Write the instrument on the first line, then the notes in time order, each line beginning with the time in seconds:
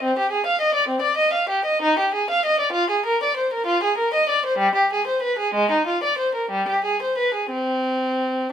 violin
0.03 C4
0.18 G4
0.31 G#4
0.46 F5
0.61 D#5
0.75 D5
0.89 C4
1.02 D5
1.17 D#5
1.33 F5
1.49 G4
1.65 D#5
1.82 D#4
1.99 G4
2.14 G#4
2.30 F5
2.45 D#5
2.60 D5
2.73 F4
2.90 G#4
3.06 A#4
3.23 D5
3.37 C5
3.53 A#4
3.67 F4
3.83 G#4
3.98 A#4
4.14 D#5
4.29 D5
4.46 C5
4.58 G3
4.75 G4
4.93 G#4
5.07 C5
5.23 B4
5.39 G#4
5.54 G#3
5.71 D#4
5.87 F4
6.04 D5
6.18 C5
6.35 A#4
6.51 G3
6.68 G4
6.84 G#4
7.02 C5
7.18 B4
7.34 G#4
7.50 C4